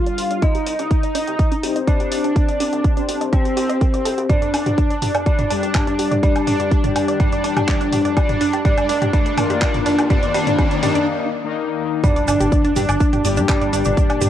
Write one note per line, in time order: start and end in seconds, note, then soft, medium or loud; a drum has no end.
0.00 0.41 G3 medium
0.00 0.41 D4 medium
0.00 0.44 F4 loud
0.00 0.41 G4 medium
0.00 0.42 F5 medium
0.06 0.15 G1 medium
0.06 0.12 D4 loud
0.06 closed hi-hat medium
0.18 0.28 G1 medium
0.18 0.24 G4 medium
0.18 open hi-hat loud
0.31 0.39 G1 medium
0.31 0.36 D5 medium
0.31 closed hi-hat medium
0.42 0.48 D4 loud
0.42 1.78 D#4 loud
0.42 1.78 D#5 medium
0.42 kick loud
0.42 closed hi-hat medium
0.55 0.60 G4 medium
0.55 closed hi-hat medium
0.67 0.76 C2 medium
0.67 0.72 D#5 medium
0.67 open hi-hat loud
0.79 0.88 C2 medium
0.79 0.85 D4 loud
0.79 closed hi-hat medium
0.91 0.97 G4 medium
0.91 kick loud
0.91 closed hi-hat medium
1.03 1.09 D#5 medium
1.03 closed hi-hat medium
1.15 1.24 G1 medium
1.15 1.21 D4 loud
1.15 open hi-hat loud
1.27 1.36 C2 medium
1.27 1.33 G4 medium
1.27 closed hi-hat medium
1.39 1.45 D#5 medium
1.39 kick loud
1.39 closed hi-hat medium
1.52 1.57 D4 loud
1.52 closed hi-hat medium
1.63 1.78 C2 medium
1.63 2.94 C4 medium
1.63 1.69 G4 medium
1.63 2.94 G4 medium
1.63 2.94 C5 loud
1.63 open hi-hat loud
1.76 1.85 G1 medium
1.76 1.81 D#5 medium
1.76 closed hi-hat medium
1.87 3.23 D4 loud
1.87 1.93 D4 loud
1.87 3.23 D5 medium
1.87 kick loud
1.87 closed hi-hat medium
2.00 2.09 C2 medium
2.00 2.06 G4 medium
2.00 closed hi-hat medium
2.12 2.21 C2 medium
2.12 2.18 D#5 medium
2.12 open hi-hat loud
2.24 2.33 C2 medium
2.24 2.30 D4 loud
2.24 closed hi-hat medium
2.36 2.42 G4 medium
2.36 kick loud
2.36 closed hi-hat medium
2.49 2.54 D#5 medium
2.49 closed hi-hat medium
2.60 2.70 C2 medium
2.60 2.66 D4 loud
2.60 open hi-hat loud
2.73 2.81 C2 medium
2.73 2.78 G4 medium
2.73 closed hi-hat medium
2.84 2.90 D#5 medium
2.84 kick loud
2.84 closed hi-hat medium
2.97 3.54 C4 loud
2.97 3.02 D4 loud
2.97 3.54 G4 medium
2.97 3.54 C5 loud
2.97 closed hi-hat medium
3.09 3.18 G1 medium
3.09 3.14 G4 medium
3.09 open hi-hat loud
3.21 3.30 C2 medium
3.21 3.26 D#5 medium
3.21 closed hi-hat medium
3.33 4.20 C4 loud
3.33 3.39 D4 loud
3.33 4.20 C5 medium
3.33 kick loud
3.33 closed hi-hat medium
3.45 3.51 G4 medium
3.45 closed hi-hat medium
3.57 3.71 C2 medium
3.57 3.66 G4 loud
3.57 open hi-hat loud
3.69 3.78 G1 medium
3.69 4.28 C4 medium
3.69 4.28 G4 medium
3.69 4.28 C5 medium
3.69 3.73 D#5 loud
3.69 closed hi-hat medium
3.81 3.85 A#4 medium
3.81 kick loud
3.81 closed hi-hat soft
3.94 4.02 C2 medium
3.94 3.99 D5 medium
3.94 closed hi-hat medium
4.05 4.15 C2 medium
4.05 4.09 A4 loud
4.05 open hi-hat loud
4.18 4.27 C2 medium
4.18 4.23 G4 medium
4.18 closed hi-hat medium
4.29 5.24 D4 loud
4.29 4.35 G4 medium
4.29 5.24 D5 medium
4.29 kick loud
4.29 closed hi-hat medium
4.29 mid tom medium
4.29 riser medium
4.42 4.47 D5 medium
4.42 closed hi-hat medium
4.54 4.63 G1 medium
4.54 4.59 D4 medium
4.54 open hi-hat loud
4.54 low woodblock medium
4.66 4.75 G1 medium
4.66 4.72 G4 medium
4.66 closed hi-hat medium
4.66 mid tom loud
4.78 4.84 D5 medium
4.78 kick loud
4.78 closed hi-hat medium
4.90 4.96 D4 medium
4.90 closed hi-hat medium
5.02 5.12 G2 medium
5.02 5.08 G4 medium
5.02 mid tom loud
5.02 open hi-hat loud
5.15 5.23 G1 medium
5.15 5.20 D5 medium
5.15 closed hi-hat medium
5.15 low woodblock medium
5.26 6.21 D4 loud
5.26 5.32 G4 medium
5.26 6.21 D5 medium
5.26 kick loud
5.26 closed hi-hat medium
5.39 5.44 D5 medium
5.39 closed hi-hat medium
5.39 mid tom loud
5.50 5.65 G1 medium
5.50 6.81 G3 medium
5.50 5.56 D4 loud
5.50 6.81 D4 medium
5.50 6.81 G4 loud
5.50 open hi-hat loud
5.63 5.72 G2 medium
5.63 5.68 G4 medium
5.63 closed hi-hat medium
5.75 5.80 D5 medium
5.75 kick loud
5.75 clap loud
5.75 closed hi-hat medium
5.75 mid tom medium
5.75 low woodblock medium
5.87 5.96 G1 medium
5.87 5.93 D4 medium
5.87 closed hi-hat medium
5.99 6.08 G1 medium
5.99 6.05 G4 medium
5.99 open hi-hat loud
6.11 6.20 G1 medium
6.11 6.17 D5 medium
6.11 closed hi-hat medium
6.11 mid tom loud
6.23 7.18 D4 loud
6.23 6.29 G4 medium
6.23 7.18 D5 medium
6.23 kick loud
6.23 closed hi-hat medium
6.36 6.41 D5 medium
6.36 closed hi-hat medium
6.36 low woodblock medium
6.47 6.57 G1 medium
6.47 6.53 D4 loud
6.47 mid tom loud
6.47 open hi-hat loud
6.60 6.69 G1 medium
6.60 6.65 G4 medium
6.60 closed hi-hat medium
6.71 6.77 D5 medium
6.71 kick loud
6.71 closed hi-hat medium
6.84 7.41 G3 loud
6.84 7.41 D4 medium
6.84 6.89 D4 loud
6.84 7.41 G4 loud
6.84 closed hi-hat medium
6.84 mid tom loud
6.96 7.05 G2 medium
6.96 7.01 G4 medium
6.96 open hi-hat loud
6.96 low woodblock medium
7.08 7.17 G1 medium
7.08 7.14 D5 medium
7.08 closed hi-hat medium
7.20 8.15 D4 loud
7.20 7.26 G4 medium
7.20 8.15 D5 loud
7.20 kick loud
7.20 closed hi-hat medium
7.20 mid tom medium
7.32 7.38 D5 medium
7.32 closed hi-hat medium
7.44 7.58 G1 medium
7.44 8.15 G3 medium
7.44 8.15 D4 medium
7.44 7.50 D4 loud
7.44 8.15 G4 medium
7.44 open hi-hat loud
7.57 7.65 G2 medium
7.57 7.62 G4 medium
7.57 closed hi-hat medium
7.57 mid tom loud
7.57 low woodblock medium
7.68 7.74 D5 medium
7.68 kick loud
7.68 clap loud
7.68 closed hi-hat medium
7.81 7.90 G1 medium
7.81 7.86 D4 loud
7.81 closed hi-hat medium
7.92 8.02 G1 medium
7.92 7.98 G4 medium
7.92 mid tom medium
7.92 open hi-hat loud
8.05 8.14 G1 medium
8.05 8.10 D5 medium
8.05 closed hi-hat medium
8.16 8.63 D4 loud
8.16 8.22 G4 medium
8.16 8.63 D5 loud
8.16 kick loud
8.16 closed hi-hat medium
8.16 low woodblock medium
8.29 8.35 D5 medium
8.29 closed hi-hat medium
8.29 mid tom loud
8.41 8.50 D#1 medium
8.41 8.47 D4 loud
8.41 open hi-hat loud
8.53 8.62 D#1 medium
8.53 8.59 G4 medium
8.53 closed hi-hat medium
8.65 9.11 D4 loud
8.65 8.71 G4 medium
8.65 9.11 D5 loud
8.65 kick loud
8.65 closed hi-hat medium
8.65 mid tom medium
8.78 8.83 D5 medium
8.78 closed hi-hat medium
8.78 low woodblock medium
8.89 8.99 D#2 medium
8.89 8.95 D4 loud
8.89 open hi-hat loud
9.02 9.10 D#1 medium
9.02 9.07 G4 medium
9.02 closed hi-hat medium
9.02 mid tom loud
9.13 9.60 D4 loud
9.13 9.19 G4 medium
9.13 9.60 D5 medium
9.13 kick loud
9.13 closed hi-hat medium
9.26 9.31 D5 medium
9.26 closed hi-hat medium
9.37 10.68 D#3 medium
9.37 10.68 A#3 medium
9.37 9.43 D4 loud
9.37 10.68 F4 loud
9.37 mid tom loud
9.37 open hi-hat loud
9.37 low woodblock medium
9.50 9.59 D#2 medium
9.50 9.55 G4 medium
9.50 closed hi-hat medium
9.62 10.08 D4 loud
9.62 9.68 G4 medium
9.62 10.08 D5 loud
9.62 kick loud
9.62 clap loud
9.62 closed hi-hat medium
9.74 9.80 D5 medium
9.74 closed hi-hat medium
9.74 mid tom medium
9.86 9.92 D4 loud
9.86 open hi-hat loud
9.98 10.04 G4 medium
9.98 closed hi-hat medium
9.98 low woodblock medium
10.10 10.32 D4 loud
10.10 10.16 G4 medium
10.10 10.32 D5 loud
10.10 kick loud
10.10 closed hi-hat medium
10.10 mid tom medium
10.23 10.28 D5 medium
10.23 closed hi-hat medium
10.34 10.57 D4 loud
10.34 10.40 G4 medium
10.34 10.57 D5 loud
10.34 open hi-hat loud
10.47 10.52 D5 medium
10.47 closed hi-hat medium
10.47 mid tom medium
10.58 10.81 D4 loud
10.58 10.64 G4 medium
10.58 10.81 D5 loud
10.58 kick loud
10.58 closed hi-hat medium
10.58 low woodblock soft
10.71 11.28 D#3 loud
10.71 11.28 A#3 loud
10.71 11.28 D#4 loud
10.71 10.76 D5 medium
10.71 closed hi-hat medium
10.83 10.92 D#2 loud
10.83 11.05 D4 loud
10.83 10.88 G4 medium
10.83 11.05 D5 loud
10.83 mid tom medium
10.83 open hi-hat loud
10.95 11.04 D#1 medium
10.95 11.01 D5 medium
10.95 closed hi-hat medium
11.44 12.02 D#3 medium
11.44 12.02 A#3 medium
11.44 12.02 D#4 medium
12.04 14.29 G2 medium
12.04 14.29 A#2 medium
12.04 13.40 D4 loud
12.04 12.09 G4 medium
12.04 13.40 D5 loud
12.04 kick loud
12.04 closed hi-hat medium
12.04 mid tom medium
12.04 impact medium
12.04 cabasa soft
12.16 12.22 D5 medium
12.16 closed hi-hat medium
12.28 12.37 G1 medium
12.28 12.34 D4 loud
12.28 open hi-hat loud
12.28 cabasa medium
12.28 low woodblock soft
12.40 12.49 G1 medium
12.40 12.46 G4 medium
12.40 closed hi-hat medium
12.40 mid tom medium
12.40 cabasa medium
12.52 12.58 D5 medium
12.52 kick loud
12.52 closed hi-hat medium
12.52 cabasa soft
12.65 12.70 D4 loud
12.65 closed hi-hat medium
12.76 12.86 G2 medium
12.76 12.82 G4 medium
12.76 mid tom medium
12.76 open hi-hat medium
12.76 cabasa medium
12.89 12.98 G1 medium
12.89 12.94 D5 medium
12.89 closed hi-hat medium
12.89 cabasa medium
12.89 low woodblock medium
13.00 13.06 D4 loud
13.00 kick loud
13.00 closed hi-hat medium
13.00 cabasa soft
13.13 13.18 G4 medium
13.13 closed hi-hat medium
13.13 mid tom medium
13.25 13.39 G1 medium
13.25 14.29 G3 medium
13.25 14.29 D4 medium
13.25 14.29 G4 loud
13.25 13.30 D5 medium
13.25 open hi-hat loud
13.25 cabasa loud
13.37 13.46 G2 medium
13.37 13.43 D4 loud
13.37 closed hi-hat medium
13.37 cabasa medium
13.49 14.29 D4 loud
13.49 13.55 G4 medium
13.49 14.29 D5 medium
13.49 kick loud
13.49 clap loud
13.49 closed hi-hat medium
13.49 mid tom medium
13.49 cabasa soft
13.49 low woodblock medium
13.61 13.70 G1 medium
13.61 13.67 D5 medium
13.61 closed hi-hat medium
13.73 13.82 G1 loud
13.73 13.79 D4 loud
13.73 open hi-hat medium
13.73 cabasa medium
13.85 13.94 G1 medium
13.85 13.91 G4 medium
13.85 closed hi-hat medium
13.85 mid tom medium
13.85 cabasa medium
13.97 14.03 D5 medium
13.97 kick loud
13.97 closed hi-hat medium
13.97 cabasa soft
14.10 14.15 D4 loud
14.10 closed hi-hat medium
14.10 low woodblock medium
14.21 14.29 G1 medium
14.21 14.27 G4 medium
14.21 mid tom medium
14.21 open hi-hat loud
14.21 cabasa medium